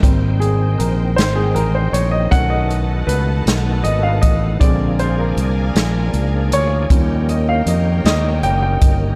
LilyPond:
<<
  \new Staff \with { instrumentName = "String section" } { \time 6/8 \key bes \dorian \tempo 4. = 52 << { <c'' g''>2. | <b' fis'' a''>2. | <bes' f'' aes''>2. | <bes' ees'' g''>2. | } \\ { ees''2.~ | ees''2. | d'2. | des''2. | } >> }
  \new Staff \with { instrumentName = "Grand piano" } { \time 6/8 \key bes \dorian r8 aes'8 bes'8 c''16 aes'16 bes'16 c''16 des''16 ees''16 | fis''16 dis''8 r16 b'4 dis''16 f''16 dis''8 | d''8 c''16 bes'8 r4 r16 des''8~ | des''8 ees''16 f''16 ees''8 ees''8 g''16 g''8 r16 | }
  \new Staff \with { instrumentName = "Grand piano" } { \clef bass \time 6/8 \key bes \dorian <g bes c'>8 r2 r8 | <dis a des'>4. r4. | <d aes c'>8 r2 r8 | <f g des'>4. r4. | }
  \new Staff \with { instrumentName = "Tonewheel organ" } { \time 6/8 \key bes \dorian <ees ces' c' g''>2. | <dis a b fis'>2. | <f bes d' g' aes'>2. | <ees bes des' g'>2. | }
  \new Staff \with { instrumentName = "Fingered electric bass" } { \clef bass \time 6/8 \key bes \dorian aes,,4 bes,,8 aes,,8 a,,8 bes,,8 | b,,4 des,8 b,,8 aes,,8 a,,8 | bes,,4 c,8 bes,,8 des,8 d,8 | ees,4 f,8 ees,8 ges,,8 g,,8 | }
  \new DrumStaff \with { instrumentName = "Drums" } \drummode { \time 6/8 <hh bd>8 hh8 hh8 <hh sn>8 hh8 hh8 | <hh bd>8 hh8 hh8 <hh sn>8 hh8 <hh bd>8 | <hh bd>8 hh8 hh8 <hh sn>8 hh8 hh8 | <hh bd>8 hh8 hh8 <hh sn>8 hh8 <hh bd>8 | }
>>